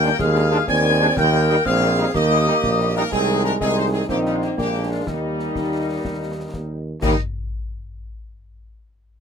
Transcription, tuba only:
0.00 0.11 D#2 loud
0.19 0.60 D#2 loud
0.68 1.09 D#2 loud
1.17 1.58 D#2 loud
1.66 2.06 A#1 loud
2.15 2.50 D#2 loud
2.63 3.04 A#1 loud
3.12 3.55 C2 loud
3.60 4.04 C2 loud
4.09 4.52 A#1 loud
4.58 5.01 A#1 medium
5.06 5.50 D#2 medium
5.55 5.98 D#2 medium
6.04 6.47 D#2 medium
6.53 6.96 D#2 medium
7.02 7.15 D#2 loud

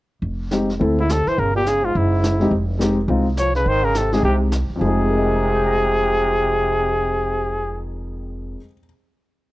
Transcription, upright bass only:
0.22 0.77 F1 medium
0.81 1.23 D2 medium
1.27 muted upright bass stroke soft
1.38 1.92 G1 medium
1.95 2.49 F#1 medium
2.51 3.06 F1 medium
3.08 3.63 C2 medium
3.66 4.20 G#1 medium
4.23 4.66 C2 medium
4.70 muted upright bass stroke soft
4.81 8.54 F1 medium

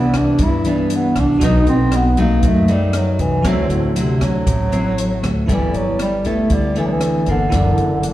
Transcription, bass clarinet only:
0.00 0.19 B3 medium
0.17 0.45 D4 medium
0.43 0.67 E4 loud
0.69 0.97 G3 medium
0.95 1.21 B3 medium
1.20 1.48 D4 loud
1.46 1.68 D#4 loud
1.69 1.98 C4 loud
1.96 2.19 B3 medium
2.20 2.49 A#3 loud
2.47 2.73 A3 medium
2.71 2.99 G3 loud
2.97 3.23 F#3 medium
3.21 3.50 E3 medium
3.49 3.72 F#3 loud
3.73 4.01 A2 medium
3.99 4.25 C3 medium
4.24 5.37 F#3 loud
5.51 5.78 E3 medium
5.77 6.00 F#3 medium
6.02 6.29 G3 loud
6.28 6.55 A3 medium
6.54 6.77 G3 medium
6.79 6.88 E3 medium
6.87 6.94 F#3 medium
6.92 7.28 E3 medium
7.30 8.13 D3 medium

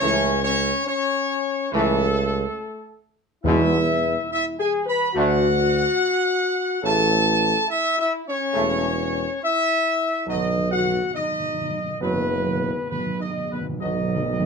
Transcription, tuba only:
0.02 0.72 C#2 loud
1.73 2.45 C#2 loud
3.44 4.16 E2 loud
5.15 5.86 D2 loud
6.84 7.55 A1 loud
8.55 9.27 E1 loud
10.28 10.99 B1 medium
12.01 12.74 F#1 medium
13.80 14.46 B1 medium

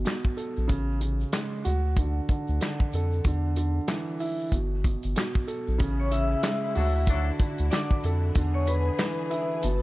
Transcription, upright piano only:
0.00 0.05 B2 medium
0.05 0.69 B2 medium
0.37 0.69 A4 medium
0.68 0.99 C#3 medium
1.01 1.65 C#3 medium
1.34 1.66 G#3 medium
1.65 3.24 F#4 loud
1.98 2.28 D3 medium
2.30 2.60 D3 medium
2.61 3.25 D3 medium
2.95 3.26 A4 medium
3.26 3.56 D3 medium
3.57 4.53 D3 medium
3.89 4.52 E3 medium
4.20 4.52 E4 medium
4.53 4.84 B2 medium
4.85 5.14 B2 medium
5.16 5.80 B2 medium
5.47 5.80 A4 medium
5.78 6.10 C#3 medium
6.11 6.76 C#3 medium
6.45 6.76 G#3 medium
6.75 8.35 F#4 loud
7.09 7.39 D3 medium
7.40 7.71 D3 medium
7.72 8.35 D3 medium
8.05 8.36 A4 medium
8.37 8.66 D3 medium
8.68 9.63 D3 medium
8.99 9.63 E3 medium
9.30 9.63 E4 medium
9.64 9.82 B2 medium

